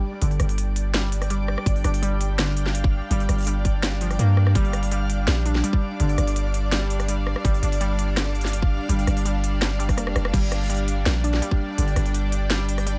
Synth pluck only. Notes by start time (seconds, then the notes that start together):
0.22 D3
0.94 G3
1.30 G3
1.84 D4
2.02 G3
2.38 D3
3.11 G3
3.47 G3
4.01 F3
4.19 A#3
4.55 G3
4.91 G3
5.28 G3
5.46 D4
5.64 G3
6.00 D3
6.72 G3
7.08 G3
7.45 G3
7.63 D4
7.81 G3
8.17 D3
8.89 G3
9.25 G3
9.61 G3
9.79 G3
9.97 A#3
10.33 G3
10.70 G3
11.06 A#3
11.24 D4
11.42 G3
11.78 D3
12.50 G3
12.86 G3